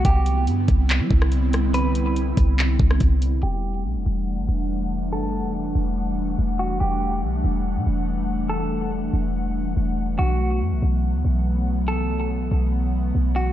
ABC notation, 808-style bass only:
X:1
M:4/4
L:1/16
Q:1/4=142
K:Em
V:1 name="808-style bass" clef=bass
C,,4 G,,2 C,,3 G, C,,6- | C,,6 C,,4 C,,2 C,,4 | E,,,4 B,,, E,,, E,,,3 G,,, E,,,6 | F,,,3 E,,,3 E,,,6 E,,,4 |
E,,,4 B,,,2 E,,,3 B,, E,,,6- | E,,,6 E,,,6 E,,,4 | B,,,4 F,, B,,, B,,,3 D,, B,,,6 | C,,3 B,,,3 B,,,6 B,,,4 |]